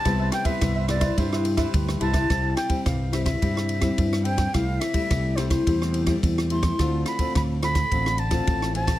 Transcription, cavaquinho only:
\new Staff \with { instrumentName = "Cavaquinho" } { \time 4/4 \key c \major \tempo 4 = 107 <e' b' c'' e''>16 <b' c'' e''>16 r16 <b' c'' e''>8 <b' c'' e''>16 <e' b' c'' e''>16 <b' c'' e''>16 <e' b' c'' e''>16 <b' c'' e''>16 r16 <b' c'' e''>8. <e' b' c'' e''>16 <b' c'' e''>16 | r1 | r1 | r1 | }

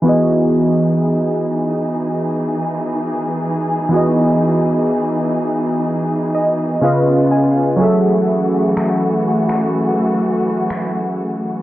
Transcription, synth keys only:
\new Staff \with { instrumentName = "Synth keys" } { \time 4/4 \key e \major \tempo 4 = 62 << { r1 | r2 r8 dis''8 eis''8 gis''8 | r1 | } \\ { <e b fis' gis' dis''>1 | <e b fis' gis' dis''>2. <cis cis' eis' b' dis''>4 | <fis cis' gis' a' e''>1 | } >> }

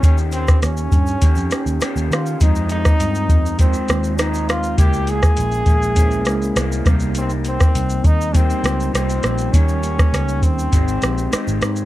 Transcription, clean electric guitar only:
\new Staff \with { instrumentName = "Clean electric guitar" } { \time 4/4 \key ees \mixolydian \tempo 4 = 101 <ees bes des' g'>2 <ees bes des' g'>4 <ees bes des' g'>4 | <f, c ees aes ees'>2 <c ees aes ees'>4 <c ees aes ees'>4 | <des aes bes fes'>4. <aes bes fes'>8 <des aes bes fes'>4 <des aes bes fes'>8 <c g bes ees'>8~ | <c g bes ees'>2 <c g bes ees'>4 <c g bes ees'>4 |
<ees bes des' g'>2 <ees aes c' ees'>4 <ees aes c' ees'>4 | }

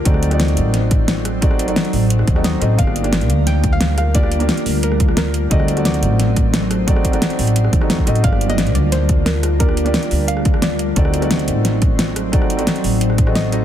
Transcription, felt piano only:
\new Staff \with { instrumentName = "Felt piano" } { \time 4/4 \key g \minor \tempo 4 = 176 <c' ees' fis' a' d''>8. <c' ees' fis' a' d''>2.~ <c' ees' fis' a' d''>16 | <c' ees' fis' a' d''>8. <c' ees' fis' a' d''>2 <c' ees' fis' a' ees''>8. <c' ees' fis' a' ees''>8 | <bes d' f' g' d''>8. <bes d' f' g' d''>2.~ <bes d' f' g' d''>16 | <bes d' f' g' d''>8. <bes d' f' g' d''>2.~ <bes d' f' g' d''>16 |
<c' ees' fis' a' d''>8. <c' ees' fis' a' d''>2.~ <c' ees' fis' a' d''>16 | <c' ees' fis' a' d''>8. <c' ees' fis' a' d''>2 <c' ees' fis' a' ees''>8. <c' ees' fis' a' ees''>8 | <bes d' f' g' d''>8. <bes d' f' g' d''>2.~ <bes d' f' g' d''>16 | <bes d' f' g' d''>8. <bes d' f' g' d''>2.~ <bes d' f' g' d''>16 |
<c' ees' fis' a' d''>8. <c' ees' fis' a' d''>2.~ <c' ees' fis' a' d''>16 | <c' ees' fis' a' d''>8. <c' ees' fis' a' d''>2 <c' ees' fis' a' ees''>8. <c' ees' fis' a' ees''>8 | }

